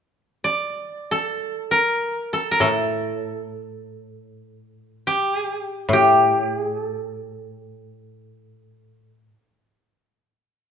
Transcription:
0.44 D5
1.11 A4
1.71 A#4
2.33 A4
2.51 A#4
2.60 A2 A4
5.07 G4
5.89 A2
5.93 G4
6.50 G#4
6.86 A4

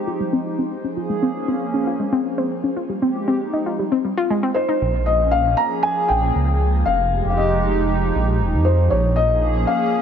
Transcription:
Already playing: F3 G#3 D#4 G4 C5
0.07 F4
0.20 G3
0.33 C4
0.59 C4
0.84 C#4 G#4
0.95 A#3 F4
1.10 G#3
1.23 C4 C#4
1.48 C4
1.74 C#4
1.87 F4
2.00 G#3
2.12 C4
2.38 C4
2.64 C#4
2.76 F4
2.89 G3
3.00 C4 G4
3.06 G#3
3.28 C4
3.40 D#4
3.53 D#4
3.66 F4
3.79 G3
3.92 C4
4.05 G3
4.17 F4
4.30 G#3
4.43 C4
4.54 D#4 C5
4.69 D#4
4.82 A#1 F3
5.06 D#5
5.11 A#3 C#4
5.31 F5
5.57 A#5
5.64 G#4
5.83 G#5
6.08 A#1 G5
6.35 C#2
6.85 F1 F5
7.11 G#3 G4
7.25 F1
7.30 D#4 F5
7.37 D#5
8.15 A#1
8.41 D#1
8.54 F2
8.65 C5
8.90 A#1 C#5
9.16 D#5
9.28 A#3 G#4
9.53 C#4
9.67 F5

